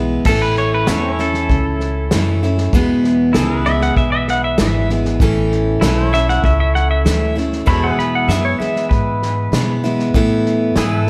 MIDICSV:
0, 0, Header, 1, 7, 480
1, 0, Start_track
1, 0, Key_signature, 3, "major"
1, 0, Tempo, 617920
1, 203, Time_signature, 4, 2, 24, 8
1, 8622, End_track
2, 0, Start_track
2, 0, Title_t, "Pedal steel guitar"
2, 0, Program_c, 0, 26
2, 204, Note_on_c, 0, 69, 72
2, 320, Note_off_c, 0, 69, 0
2, 325, Note_on_c, 0, 71, 81
2, 440, Note_off_c, 0, 71, 0
2, 452, Note_on_c, 0, 73, 78
2, 564, Note_off_c, 0, 73, 0
2, 578, Note_on_c, 0, 71, 89
2, 687, Note_off_c, 0, 71, 0
2, 701, Note_on_c, 0, 73, 65
2, 925, Note_off_c, 0, 73, 0
2, 937, Note_on_c, 0, 69, 93
2, 1862, Note_off_c, 0, 69, 0
2, 2843, Note_on_c, 0, 76, 99
2, 2960, Note_off_c, 0, 76, 0
2, 2972, Note_on_c, 0, 78, 89
2, 3083, Note_off_c, 0, 78, 0
2, 3086, Note_on_c, 0, 76, 93
2, 3191, Note_off_c, 0, 76, 0
2, 3201, Note_on_c, 0, 76, 93
2, 3318, Note_off_c, 0, 76, 0
2, 3341, Note_on_c, 0, 78, 95
2, 3448, Note_off_c, 0, 78, 0
2, 3451, Note_on_c, 0, 76, 85
2, 3564, Note_off_c, 0, 76, 0
2, 3583, Note_on_c, 0, 76, 86
2, 3806, Note_off_c, 0, 76, 0
2, 4768, Note_on_c, 0, 76, 105
2, 4882, Note_off_c, 0, 76, 0
2, 4889, Note_on_c, 0, 78, 92
2, 5003, Note_off_c, 0, 78, 0
2, 5011, Note_on_c, 0, 76, 83
2, 5120, Note_off_c, 0, 76, 0
2, 5129, Note_on_c, 0, 76, 85
2, 5242, Note_off_c, 0, 76, 0
2, 5246, Note_on_c, 0, 78, 96
2, 5361, Note_off_c, 0, 78, 0
2, 5366, Note_on_c, 0, 76, 84
2, 5474, Note_off_c, 0, 76, 0
2, 5484, Note_on_c, 0, 76, 104
2, 5717, Note_off_c, 0, 76, 0
2, 5965, Note_on_c, 0, 83, 94
2, 6081, Note_off_c, 0, 83, 0
2, 6087, Note_on_c, 0, 78, 85
2, 6202, Note_off_c, 0, 78, 0
2, 6205, Note_on_c, 0, 83, 79
2, 6321, Note_off_c, 0, 83, 0
2, 6333, Note_on_c, 0, 78, 86
2, 6436, Note_on_c, 0, 76, 84
2, 6446, Note_off_c, 0, 78, 0
2, 6557, Note_off_c, 0, 76, 0
2, 6562, Note_on_c, 0, 73, 93
2, 6670, Note_on_c, 0, 76, 79
2, 6680, Note_off_c, 0, 73, 0
2, 6908, Note_on_c, 0, 71, 93
2, 6910, Note_off_c, 0, 76, 0
2, 7849, Note_off_c, 0, 71, 0
2, 8622, End_track
3, 0, Start_track
3, 0, Title_t, "Pedal steel guitar"
3, 0, Program_c, 1, 26
3, 0, Note_on_c, 1, 59, 62
3, 0, Note_on_c, 1, 64, 56
3, 0, Note_on_c, 1, 68, 64
3, 186, Note_off_c, 1, 59, 0
3, 191, Note_off_c, 1, 64, 0
3, 195, Note_off_c, 1, 68, 0
3, 678, Note_on_c, 1, 59, 64
3, 691, Note_on_c, 1, 64, 70
3, 704, Note_on_c, 1, 69, 65
3, 872, Note_off_c, 1, 59, 0
3, 872, Note_on_c, 1, 61, 64
3, 2106, Note_off_c, 1, 61, 0
3, 2113, Note_off_c, 1, 64, 0
3, 2119, Note_off_c, 1, 69, 0
3, 2587, Note_on_c, 1, 64, 63
3, 2598, Note_on_c, 1, 68, 62
3, 2602, Note_on_c, 1, 69, 64
3, 2796, Note_off_c, 1, 69, 0
3, 2796, Note_on_c, 1, 71, 64
3, 4021, Note_off_c, 1, 64, 0
3, 4026, Note_off_c, 1, 68, 0
3, 4029, Note_off_c, 1, 71, 0
3, 4515, Note_on_c, 1, 64, 67
3, 4528, Note_on_c, 1, 69, 73
3, 4533, Note_on_c, 1, 71, 66
3, 4727, Note_off_c, 1, 71, 0
3, 4727, Note_on_c, 1, 73, 66
3, 5945, Note_off_c, 1, 64, 0
3, 5952, Note_off_c, 1, 69, 0
3, 5955, Note_off_c, 1, 73, 0
3, 5960, Note_on_c, 1, 64, 74
3, 5964, Note_on_c, 1, 69, 76
3, 5976, Note_on_c, 1, 73, 79
3, 6120, Note_off_c, 1, 69, 0
3, 6120, Note_on_c, 1, 68, 76
3, 6171, Note_off_c, 1, 73, 0
3, 6171, Note_on_c, 1, 71, 79
3, 7865, Note_off_c, 1, 64, 0
3, 7867, Note_off_c, 1, 68, 0
3, 7873, Note_off_c, 1, 71, 0
3, 8368, Note_on_c, 1, 64, 63
3, 8371, Note_on_c, 1, 68, 71
3, 8382, Note_on_c, 1, 71, 59
3, 8526, Note_off_c, 1, 68, 0
3, 8526, Note_on_c, 1, 69, 71
3, 8622, Note_off_c, 1, 64, 0
3, 8622, Note_off_c, 1, 69, 0
3, 8622, Note_off_c, 1, 71, 0
3, 8622, End_track
4, 0, Start_track
4, 0, Title_t, "Steel-string acoustic guitar"
4, 0, Program_c, 2, 25
4, 0, Note_on_c, 2, 52, 42
4, 0, Note_on_c, 2, 56, 45
4, 0, Note_on_c, 2, 59, 58
4, 0, Note_on_c, 2, 64, 56
4, 201, Note_off_c, 2, 52, 0
4, 203, Note_off_c, 2, 64, 0
4, 204, Note_off_c, 2, 59, 0
4, 207, Note_on_c, 2, 45, 83
4, 209, Note_off_c, 2, 56, 0
4, 211, Note_on_c, 2, 52, 81
4, 213, Note_on_c, 2, 57, 88
4, 213, Note_on_c, 2, 61, 76
4, 218, Note_on_c, 2, 64, 89
4, 676, Note_off_c, 2, 57, 0
4, 677, Note_off_c, 2, 52, 0
4, 680, Note_on_c, 2, 52, 60
4, 682, Note_off_c, 2, 61, 0
4, 685, Note_off_c, 2, 45, 0
4, 685, Note_on_c, 2, 57, 69
4, 692, Note_off_c, 2, 64, 0
4, 692, Note_on_c, 2, 61, 66
4, 695, Note_on_c, 2, 64, 66
4, 912, Note_off_c, 2, 64, 0
4, 917, Note_off_c, 2, 61, 0
4, 921, Note_on_c, 2, 64, 49
4, 922, Note_off_c, 2, 52, 0
4, 924, Note_off_c, 2, 57, 0
4, 926, Note_on_c, 2, 61, 45
4, 937, Note_on_c, 2, 57, 34
4, 1640, Note_off_c, 2, 57, 0
4, 1644, Note_on_c, 2, 52, 65
4, 1645, Note_off_c, 2, 61, 0
4, 1649, Note_on_c, 2, 57, 63
4, 1653, Note_off_c, 2, 64, 0
4, 1654, Note_on_c, 2, 61, 67
4, 1656, Note_on_c, 2, 64, 71
4, 1877, Note_off_c, 2, 64, 0
4, 1884, Note_off_c, 2, 52, 0
4, 1886, Note_off_c, 2, 57, 0
4, 1886, Note_off_c, 2, 61, 0
4, 1886, Note_on_c, 2, 64, 57
4, 1895, Note_on_c, 2, 61, 55
4, 1902, Note_on_c, 2, 57, 43
4, 2125, Note_off_c, 2, 64, 0
4, 2128, Note_on_c, 2, 40, 99
4, 2129, Note_off_c, 2, 61, 0
4, 2133, Note_off_c, 2, 57, 0
4, 2133, Note_on_c, 2, 47, 78
4, 2133, Note_on_c, 2, 52, 93
4, 2133, Note_on_c, 2, 59, 101
4, 2137, Note_on_c, 2, 56, 89
4, 2140, Note_on_c, 2, 64, 101
4, 2595, Note_off_c, 2, 56, 0
4, 2598, Note_off_c, 2, 52, 0
4, 2601, Note_on_c, 2, 52, 72
4, 2603, Note_off_c, 2, 59, 0
4, 2605, Note_off_c, 2, 40, 0
4, 2605, Note_on_c, 2, 56, 74
4, 2608, Note_off_c, 2, 47, 0
4, 2612, Note_off_c, 2, 64, 0
4, 2613, Note_on_c, 2, 59, 67
4, 2615, Note_on_c, 2, 64, 76
4, 2830, Note_off_c, 2, 64, 0
4, 2838, Note_off_c, 2, 56, 0
4, 2838, Note_off_c, 2, 59, 0
4, 2839, Note_on_c, 2, 64, 46
4, 2842, Note_off_c, 2, 52, 0
4, 2847, Note_on_c, 2, 59, 43
4, 2848, Note_on_c, 2, 56, 44
4, 2854, Note_on_c, 2, 52, 39
4, 3551, Note_off_c, 2, 56, 0
4, 3552, Note_off_c, 2, 52, 0
4, 3555, Note_off_c, 2, 59, 0
4, 3555, Note_on_c, 2, 52, 64
4, 3560, Note_on_c, 2, 56, 60
4, 3565, Note_on_c, 2, 59, 60
4, 3566, Note_off_c, 2, 64, 0
4, 3570, Note_on_c, 2, 64, 61
4, 3799, Note_off_c, 2, 52, 0
4, 3799, Note_off_c, 2, 64, 0
4, 3802, Note_off_c, 2, 56, 0
4, 3804, Note_off_c, 2, 59, 0
4, 3808, Note_on_c, 2, 64, 53
4, 3814, Note_on_c, 2, 59, 47
4, 3818, Note_on_c, 2, 56, 46
4, 3823, Note_on_c, 2, 52, 41
4, 4042, Note_off_c, 2, 52, 0
4, 4046, Note_off_c, 2, 64, 0
4, 4047, Note_on_c, 2, 45, 83
4, 4049, Note_off_c, 2, 59, 0
4, 4051, Note_off_c, 2, 56, 0
4, 4051, Note_on_c, 2, 52, 104
4, 4054, Note_on_c, 2, 57, 102
4, 4055, Note_on_c, 2, 64, 108
4, 4057, Note_on_c, 2, 61, 105
4, 4520, Note_off_c, 2, 52, 0
4, 4521, Note_off_c, 2, 57, 0
4, 4523, Note_on_c, 2, 52, 62
4, 4526, Note_off_c, 2, 45, 0
4, 4526, Note_off_c, 2, 61, 0
4, 4530, Note_on_c, 2, 57, 66
4, 4535, Note_on_c, 2, 61, 80
4, 4540, Note_off_c, 2, 64, 0
4, 4543, Note_on_c, 2, 64, 84
4, 4751, Note_off_c, 2, 64, 0
4, 4760, Note_on_c, 2, 64, 49
4, 4761, Note_off_c, 2, 61, 0
4, 4764, Note_off_c, 2, 52, 0
4, 4767, Note_off_c, 2, 57, 0
4, 4770, Note_on_c, 2, 61, 46
4, 4777, Note_on_c, 2, 57, 36
4, 5478, Note_off_c, 2, 57, 0
4, 5483, Note_on_c, 2, 52, 56
4, 5484, Note_off_c, 2, 61, 0
4, 5487, Note_on_c, 2, 57, 59
4, 5493, Note_on_c, 2, 61, 54
4, 5497, Note_off_c, 2, 64, 0
4, 5500, Note_on_c, 2, 64, 54
4, 5704, Note_off_c, 2, 64, 0
4, 5713, Note_off_c, 2, 61, 0
4, 5713, Note_on_c, 2, 64, 52
4, 5722, Note_on_c, 2, 61, 47
4, 5723, Note_off_c, 2, 52, 0
4, 5726, Note_off_c, 2, 57, 0
4, 5734, Note_on_c, 2, 57, 41
4, 5949, Note_on_c, 2, 40, 79
4, 5953, Note_on_c, 2, 47, 88
4, 5955, Note_off_c, 2, 64, 0
4, 5956, Note_on_c, 2, 52, 84
4, 5957, Note_off_c, 2, 61, 0
4, 5960, Note_off_c, 2, 57, 0
4, 5960, Note_on_c, 2, 59, 87
4, 5963, Note_on_c, 2, 56, 85
4, 5965, Note_on_c, 2, 64, 80
4, 6431, Note_off_c, 2, 56, 0
4, 6434, Note_off_c, 2, 52, 0
4, 6437, Note_off_c, 2, 40, 0
4, 6437, Note_on_c, 2, 52, 57
4, 6439, Note_off_c, 2, 47, 0
4, 6440, Note_on_c, 2, 56, 68
4, 6442, Note_off_c, 2, 59, 0
4, 6445, Note_on_c, 2, 59, 67
4, 6448, Note_off_c, 2, 64, 0
4, 6451, Note_on_c, 2, 64, 66
4, 6669, Note_off_c, 2, 64, 0
4, 6678, Note_on_c, 2, 64, 52
4, 6681, Note_off_c, 2, 52, 0
4, 6681, Note_off_c, 2, 59, 0
4, 6683, Note_off_c, 2, 56, 0
4, 6691, Note_on_c, 2, 56, 47
4, 6691, Note_on_c, 2, 59, 48
4, 6698, Note_on_c, 2, 52, 39
4, 7391, Note_off_c, 2, 52, 0
4, 7400, Note_off_c, 2, 56, 0
4, 7401, Note_on_c, 2, 52, 57
4, 7402, Note_off_c, 2, 64, 0
4, 7403, Note_off_c, 2, 59, 0
4, 7409, Note_on_c, 2, 56, 59
4, 7412, Note_on_c, 2, 59, 66
4, 7415, Note_on_c, 2, 64, 64
4, 7632, Note_off_c, 2, 64, 0
4, 7638, Note_off_c, 2, 59, 0
4, 7641, Note_on_c, 2, 64, 60
4, 7643, Note_off_c, 2, 52, 0
4, 7647, Note_off_c, 2, 56, 0
4, 7648, Note_on_c, 2, 59, 52
4, 7656, Note_on_c, 2, 56, 55
4, 7659, Note_on_c, 2, 52, 48
4, 7876, Note_off_c, 2, 52, 0
4, 7879, Note_on_c, 2, 45, 90
4, 7881, Note_off_c, 2, 64, 0
4, 7882, Note_off_c, 2, 59, 0
4, 7885, Note_off_c, 2, 56, 0
4, 7886, Note_on_c, 2, 52, 88
4, 7888, Note_on_c, 2, 57, 88
4, 7890, Note_on_c, 2, 64, 106
4, 7892, Note_on_c, 2, 59, 104
4, 8352, Note_off_c, 2, 52, 0
4, 8362, Note_on_c, 2, 52, 63
4, 8363, Note_off_c, 2, 45, 0
4, 8366, Note_off_c, 2, 59, 0
4, 8369, Note_off_c, 2, 64, 0
4, 8376, Note_on_c, 2, 59, 76
4, 8379, Note_on_c, 2, 64, 72
4, 8399, Note_off_c, 2, 57, 0
4, 8601, Note_off_c, 2, 64, 0
4, 8605, Note_off_c, 2, 52, 0
4, 8605, Note_off_c, 2, 59, 0
4, 8622, End_track
5, 0, Start_track
5, 0, Title_t, "Upright bass"
5, 0, Program_c, 3, 32
5, 0, Note_on_c, 3, 35, 74
5, 134, Note_off_c, 3, 35, 0
5, 193, Note_on_c, 3, 33, 84
5, 663, Note_off_c, 3, 33, 0
5, 687, Note_on_c, 3, 40, 80
5, 1151, Note_off_c, 3, 40, 0
5, 1159, Note_on_c, 3, 37, 83
5, 1627, Note_off_c, 3, 37, 0
5, 1645, Note_on_c, 3, 42, 92
5, 2110, Note_off_c, 3, 42, 0
5, 2122, Note_on_c, 3, 40, 91
5, 2588, Note_off_c, 3, 40, 0
5, 2601, Note_on_c, 3, 37, 90
5, 3068, Note_off_c, 3, 37, 0
5, 3077, Note_on_c, 3, 35, 67
5, 3546, Note_off_c, 3, 35, 0
5, 3566, Note_on_c, 3, 32, 94
5, 4030, Note_off_c, 3, 32, 0
5, 4040, Note_on_c, 3, 33, 86
5, 4508, Note_off_c, 3, 33, 0
5, 4518, Note_on_c, 3, 35, 96
5, 4987, Note_off_c, 3, 35, 0
5, 4997, Note_on_c, 3, 37, 81
5, 5466, Note_off_c, 3, 37, 0
5, 5476, Note_on_c, 3, 38, 82
5, 5946, Note_off_c, 3, 38, 0
5, 5958, Note_on_c, 3, 40, 88
5, 6184, Note_off_c, 3, 40, 0
5, 6429, Note_on_c, 3, 42, 91
5, 6660, Note_off_c, 3, 42, 0
5, 6921, Note_on_c, 3, 44, 74
5, 7389, Note_off_c, 3, 44, 0
5, 7394, Note_on_c, 3, 47, 89
5, 7866, Note_off_c, 3, 47, 0
5, 7883, Note_on_c, 3, 45, 87
5, 8351, Note_off_c, 3, 45, 0
5, 8361, Note_on_c, 3, 44, 90
5, 8622, Note_off_c, 3, 44, 0
5, 8622, End_track
6, 0, Start_track
6, 0, Title_t, "Muted upright bass strokes"
6, 6198, Note_on_c, 9, 29, 39
6, 6276, Note_off_c, 9, 29, 0
6, 6680, Note_on_c, 9, 29, 35
6, 6758, Note_off_c, 9, 29, 0
6, 8622, End_track
7, 0, Start_track
7, 0, Title_t, "Drums"
7, 193, Note_on_c, 9, 38, 31
7, 193, Note_on_c, 9, 49, 87
7, 197, Note_on_c, 9, 36, 104
7, 271, Note_off_c, 9, 38, 0
7, 271, Note_off_c, 9, 49, 0
7, 275, Note_off_c, 9, 36, 0
7, 437, Note_on_c, 9, 38, 33
7, 515, Note_off_c, 9, 38, 0
7, 675, Note_on_c, 9, 38, 106
7, 675, Note_on_c, 9, 44, 70
7, 753, Note_off_c, 9, 38, 0
7, 753, Note_off_c, 9, 44, 0
7, 922, Note_on_c, 9, 38, 33
7, 1000, Note_off_c, 9, 38, 0
7, 1041, Note_on_c, 9, 38, 35
7, 1118, Note_off_c, 9, 38, 0
7, 1161, Note_on_c, 9, 36, 89
7, 1161, Note_on_c, 9, 38, 31
7, 1238, Note_off_c, 9, 38, 0
7, 1239, Note_off_c, 9, 36, 0
7, 1399, Note_on_c, 9, 38, 33
7, 1477, Note_off_c, 9, 38, 0
7, 1639, Note_on_c, 9, 38, 108
7, 1639, Note_on_c, 9, 44, 82
7, 1717, Note_off_c, 9, 38, 0
7, 1717, Note_off_c, 9, 44, 0
7, 1884, Note_on_c, 9, 38, 29
7, 1962, Note_off_c, 9, 38, 0
7, 2001, Note_on_c, 9, 38, 32
7, 2079, Note_off_c, 9, 38, 0
7, 2121, Note_on_c, 9, 36, 102
7, 2121, Note_on_c, 9, 38, 34
7, 2199, Note_off_c, 9, 36, 0
7, 2199, Note_off_c, 9, 38, 0
7, 2362, Note_on_c, 9, 38, 31
7, 2440, Note_off_c, 9, 38, 0
7, 2597, Note_on_c, 9, 38, 110
7, 2597, Note_on_c, 9, 44, 78
7, 2675, Note_off_c, 9, 38, 0
7, 2675, Note_off_c, 9, 44, 0
7, 2836, Note_on_c, 9, 38, 34
7, 2914, Note_off_c, 9, 38, 0
7, 2962, Note_on_c, 9, 38, 31
7, 3040, Note_off_c, 9, 38, 0
7, 3080, Note_on_c, 9, 38, 33
7, 3081, Note_on_c, 9, 36, 95
7, 3158, Note_off_c, 9, 36, 0
7, 3158, Note_off_c, 9, 38, 0
7, 3323, Note_on_c, 9, 38, 35
7, 3400, Note_off_c, 9, 38, 0
7, 3557, Note_on_c, 9, 38, 119
7, 3557, Note_on_c, 9, 44, 85
7, 3635, Note_off_c, 9, 38, 0
7, 3635, Note_off_c, 9, 44, 0
7, 3803, Note_on_c, 9, 38, 33
7, 3881, Note_off_c, 9, 38, 0
7, 3921, Note_on_c, 9, 38, 36
7, 3999, Note_off_c, 9, 38, 0
7, 4040, Note_on_c, 9, 36, 108
7, 4041, Note_on_c, 9, 38, 31
7, 4118, Note_off_c, 9, 36, 0
7, 4118, Note_off_c, 9, 38, 0
7, 4284, Note_on_c, 9, 38, 32
7, 4362, Note_off_c, 9, 38, 0
7, 4522, Note_on_c, 9, 38, 111
7, 4522, Note_on_c, 9, 44, 81
7, 4600, Note_off_c, 9, 38, 0
7, 4600, Note_off_c, 9, 44, 0
7, 4766, Note_on_c, 9, 38, 38
7, 4843, Note_off_c, 9, 38, 0
7, 4886, Note_on_c, 9, 38, 33
7, 4963, Note_off_c, 9, 38, 0
7, 5001, Note_on_c, 9, 36, 93
7, 5003, Note_on_c, 9, 38, 31
7, 5079, Note_off_c, 9, 36, 0
7, 5081, Note_off_c, 9, 38, 0
7, 5245, Note_on_c, 9, 38, 36
7, 5323, Note_off_c, 9, 38, 0
7, 5483, Note_on_c, 9, 38, 100
7, 5483, Note_on_c, 9, 44, 83
7, 5561, Note_off_c, 9, 38, 0
7, 5561, Note_off_c, 9, 44, 0
7, 5728, Note_on_c, 9, 38, 31
7, 5806, Note_off_c, 9, 38, 0
7, 5844, Note_on_c, 9, 38, 34
7, 5922, Note_off_c, 9, 38, 0
7, 5960, Note_on_c, 9, 36, 104
7, 5963, Note_on_c, 9, 38, 31
7, 6038, Note_off_c, 9, 36, 0
7, 6040, Note_off_c, 9, 38, 0
7, 6205, Note_on_c, 9, 38, 31
7, 6283, Note_off_c, 9, 38, 0
7, 6443, Note_on_c, 9, 38, 98
7, 6443, Note_on_c, 9, 44, 77
7, 6521, Note_off_c, 9, 38, 0
7, 6521, Note_off_c, 9, 44, 0
7, 6683, Note_on_c, 9, 38, 31
7, 6761, Note_off_c, 9, 38, 0
7, 6805, Note_on_c, 9, 38, 34
7, 6883, Note_off_c, 9, 38, 0
7, 6920, Note_on_c, 9, 36, 91
7, 6924, Note_on_c, 9, 38, 32
7, 6998, Note_off_c, 9, 36, 0
7, 7002, Note_off_c, 9, 38, 0
7, 7164, Note_on_c, 9, 38, 34
7, 7242, Note_off_c, 9, 38, 0
7, 7404, Note_on_c, 9, 38, 110
7, 7404, Note_on_c, 9, 44, 90
7, 7481, Note_off_c, 9, 38, 0
7, 7481, Note_off_c, 9, 44, 0
7, 7642, Note_on_c, 9, 38, 36
7, 7720, Note_off_c, 9, 38, 0
7, 7763, Note_on_c, 9, 38, 31
7, 7840, Note_off_c, 9, 38, 0
7, 7880, Note_on_c, 9, 36, 104
7, 7881, Note_on_c, 9, 38, 33
7, 7957, Note_off_c, 9, 36, 0
7, 7958, Note_off_c, 9, 38, 0
7, 8123, Note_on_c, 9, 38, 31
7, 8200, Note_off_c, 9, 38, 0
7, 8355, Note_on_c, 9, 38, 106
7, 8355, Note_on_c, 9, 44, 84
7, 8433, Note_off_c, 9, 38, 0
7, 8433, Note_off_c, 9, 44, 0
7, 8598, Note_on_c, 9, 38, 32
7, 8622, Note_off_c, 9, 38, 0
7, 8622, End_track
0, 0, End_of_file